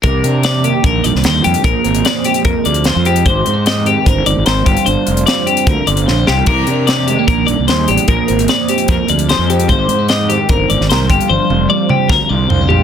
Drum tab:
CC |----------------|----------------|----------------|----------------|
HH |x-x-x-x-x-x-x-xx|x-xxx-xxx-xxx-xx|x-x-x-x-x-x-x-xx|x-xxx-xxx-xx----|
SD |----o------oo---|----o-------o---|----o-------o---|----o-------o-o-|
T1 |----------------|----------------|----------------|----------------|
T2 |----------------|----------------|----------------|----------------|
FT |----------------|----------------|----------------|----------------|
BD |o-------o-------|o-------o-------|o-------o-----o-|--------o-------|

CC |x---------------|----------------|----------------|----------------|
HH |x-x-x-x-x-x-x-xx|x-xxx-xxx-xxx-xx|x-x-x-x-x-x-x-xx|----------------|
SD |----o-------o---|----o-------o---|----o------oo---|--------o-------|
T1 |----------------|----------------|----------------|o-o-------------|
T2 |----------------|----------------|----------------|------o---------|
FT |----------------|----------------|----------------|------------o-o-|
BD |o-------o-------|o-------o-------|o-------o-----o-|--------o-------|